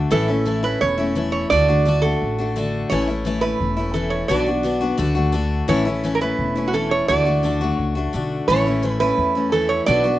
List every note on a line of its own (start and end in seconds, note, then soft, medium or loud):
0.00 0.11 D3 medium
0.00 0.11 A3 medium
0.00 0.12 D4 medium
0.00 0.12 F#4 medium
0.11 0.73 A1 medium
0.11 0.29 A2 medium
0.11 0.29 E3 medium
0.11 0.29 A3 medium
0.11 0.28 C#4 medium
0.11 0.27 E4 medium
0.11 0.60 A4 medium
0.28 0.45 A3 soft
0.28 0.46 C#4 soft
0.28 0.46 E4 soft
0.45 0.63 E3 medium
0.45 0.64 A3 medium
0.45 0.63 C#4 medium
0.45 0.61 E4 medium
0.63 1.00 A3 soft
0.63 0.98 C#4 soft
0.63 0.96 E4 soft
0.63 0.82 B4 medium
0.81 1.43 E1 medium
0.81 1.31 C#5 medium
0.98 1.15 A3 soft
0.98 1.15 C#4 soft
0.98 1.16 E4 medium
1.15 1.50 E3 medium
1.15 1.51 A3 medium
1.15 1.51 C#4 medium
1.15 1.52 E4 medium
1.32 1.50 C#5 medium
1.50 2.13 D2 medium
1.50 1.68 D3 medium
1.50 1.69 A3 medium
1.50 1.68 D4 medium
1.50 1.67 F#4 medium
1.50 2.04 D5 loud
1.68 1.85 A3 soft
1.68 1.86 D4 soft
1.68 1.86 F#4 soft
1.85 2.03 D3 medium
1.85 2.04 A3 medium
1.85 2.03 D4 medium
1.85 2.01 F#4 medium
2.02 2.39 A3 soft
2.02 2.39 D4 soft
2.02 2.37 F#4 soft
2.02 2.68 A4 medium
2.22 2.83 A1 medium
2.38 2.55 A3 soft
2.38 2.56 D4 soft
2.38 2.56 F#4 soft
2.56 2.91 D3 medium
2.56 2.90 A3 medium
2.56 2.91 D4 medium
2.56 2.92 F#4 medium
2.90 3.52 A1 medium
2.90 3.08 A2 medium
2.90 3.08 E3 medium
2.90 3.08 A3 medium
2.90 3.08 C#4 medium
2.90 3.06 E4 medium
2.90 3.41 C#5 medium
3.07 3.25 A3 soft
3.07 3.26 C#4 soft
3.07 3.25 E4 soft
3.25 3.43 E3 medium
3.25 3.43 A3 medium
3.25 3.42 C#4 medium
3.25 3.41 E4 medium
3.41 3.78 A3 soft
3.41 3.77 C#4 soft
3.41 3.75 E4 soft
3.41 3.96 B4 medium
3.60 4.22 E1 medium
3.77 3.94 A3 soft
3.77 3.94 C#4 soft
3.77 3.95 E4 soft
3.94 4.29 E3 medium
3.94 4.30 A3 medium
3.94 4.30 C#4 medium
3.94 4.31 E4 medium
3.94 4.12 A4 medium
4.10 4.28 C#5 medium
4.28 4.92 B1 medium
4.28 4.47 B2 medium
4.28 4.47 F#3 medium
4.28 4.47 B3 medium
4.28 4.46 D4 medium
4.28 4.45 F#4 medium
4.28 5.30 D5 medium
4.46 4.63 B3 soft
4.46 4.64 D4 soft
4.46 4.64 F#4 soft
4.63 4.81 F#3 medium
4.63 4.82 B3 medium
4.63 4.80 D4 medium
4.63 4.79 F#4 medium
4.81 4.98 B3 soft
4.81 4.98 D4 soft
4.81 4.98 F#4 medium
4.97 5.61 D2 medium
4.97 5.16 D3 medium
4.97 5.16 A3 medium
4.97 5.15 D4 medium
4.97 5.14 F#4 medium
5.15 5.32 A3 soft
5.15 5.33 D4 soft
5.15 5.33 F#4 medium
5.32 5.68 D3 medium
5.32 5.68 A3 medium
5.32 5.68 D4 medium
5.32 5.69 F#4 medium
5.68 6.31 A1 medium
5.68 5.86 A2 medium
5.68 5.86 E3 medium
5.68 5.86 A3 medium
5.68 5.85 C#4 medium
5.68 5.84 E4 medium
5.68 6.11 C#5 medium
5.85 6.03 A3 soft
5.85 6.04 C#4 soft
5.85 6.03 E4 soft
6.04 6.21 E3 medium
6.04 6.22 A3 medium
6.04 6.21 C#4 medium
6.04 6.20 E4 medium
6.15 6.21 A#4 medium
6.21 6.58 A3 soft
6.21 6.56 C#4 soft
6.21 6.54 E4 soft
6.21 6.71 B4 medium
6.39 7.00 E1 medium
6.55 6.73 A3 soft
6.55 6.74 C#4 soft
6.55 6.73 E4 soft
6.68 6.73 F#4 medium
6.73 7.08 E3 soft
6.73 7.09 A3 medium
6.73 7.09 C#4 medium
6.73 7.09 E4 medium
6.73 6.92 A4 medium
6.91 7.08 C#5 medium
7.08 7.70 D2 medium
7.08 7.26 D3 medium
7.08 7.26 A3 medium
7.08 7.25 D4 medium
7.08 7.24 F#4 medium
7.08 7.75 D5 loud
7.25 7.43 A3 soft
7.25 7.43 D4 soft
7.25 7.43 F#4 soft
7.43 7.61 D3 medium
7.43 7.61 A3 medium
7.43 7.61 D4 medium
7.43 7.60 F#4 medium
7.61 7.97 A3 soft
7.61 7.96 D4 soft
7.61 7.94 F#4 medium
7.75 8.08 C#2 medium
7.75 8.09 C#5 loud
7.95 8.13 A3 soft
7.95 8.14 D4 soft
7.95 8.13 F#4 medium
8.13 8.43 B1 medium
8.13 8.48 D3 medium
8.13 8.48 A3 medium
8.13 8.49 D4 medium
8.13 8.49 F#4 medium
8.48 9.10 A1 medium
8.48 8.66 A2 medium
8.48 8.66 E3 medium
8.48 8.66 A3 medium
8.48 8.65 C#4 medium
8.48 8.64 E4 medium
8.48 9.00 C#5 loud
8.65 8.82 A3 soft
8.65 8.83 C#4 soft
8.65 8.83 E4 soft
8.83 9.00 E3 medium
8.83 9.00 A3 medium
8.83 9.00 C#4 medium
8.83 8.99 E4 medium
9.00 9.36 A3 soft
9.00 9.35 C#4 soft
9.00 9.34 E4 soft
9.00 9.54 B4 medium
9.18 9.79 E2 medium
9.35 9.52 A3 soft
9.35 9.52 C#4 soft
9.35 9.52 E4 soft
9.52 9.87 E3 medium
9.52 9.87 A3 medium
9.52 9.88 C#4 medium
9.52 9.88 E4 medium
9.52 9.70 A4 medium
9.69 9.85 C#5 medium
9.86 10.19 B1 medium
9.86 10.04 B2 medium
9.86 10.05 F#3 medium
9.86 10.05 B3 medium
9.86 10.04 D4 medium
9.86 10.02 F#4 medium
9.86 10.19 D5 loud
10.04 10.19 B3 soft
10.04 10.19 D4 soft
10.04 10.19 F#4 soft